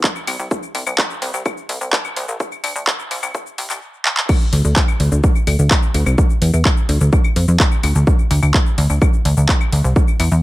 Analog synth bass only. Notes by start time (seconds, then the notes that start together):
0.28 C2
0.39 C2
0.75 C2
0.87 C2
1.22 C2
1.34 C2
1.69 C2
1.81 C2
2.16 C2
2.28 A#1
2.64 D2
2.76 D2
3.11 C2
3.23 C2
3.58 C2
3.70 C2
4.53 D2
4.65 D2
5.00 D2
5.12 D2
5.47 D2
5.59 D2
5.94 D2
6.06 C2
6.42 E2
6.54 E2
6.89 D2
7.01 D2
7.36 F2
7.48 F2
7.83 D2
7.95 D2
8.31 D2
8.43 D2
8.78 D2
8.90 D2
9.25 D2
9.37 D2
9.72 D2
9.84 C2
10.20 E2
10.32 E2